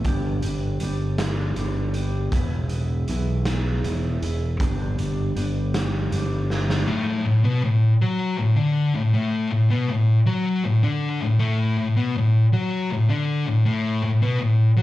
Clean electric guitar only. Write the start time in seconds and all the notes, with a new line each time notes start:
0.05 G3 B3 D4 G4
0.43 B3 D4 G4
0.81 G3 B3 D4 G4
1.19 B3 D4 G4
1.57 G3 B3 D4 G4
1.94 B3 D4 G4
2.32 E3 B3 E4 G#4
2.71 B3 E4 G#4
3.08 E3 B3 E4 G#4
3.46 B3 E4 G#4
3.84 E3 B3 E4 G#4
4.22 B3 E4 G#4
4.60 G3 B3 D4 G4
4.98 B3 D4 G4
5.35 G3 B3 D4 G4
5.74 B3 D4 G4
6.12 G3 B3 D4 G4
6.50 B3 D4 G4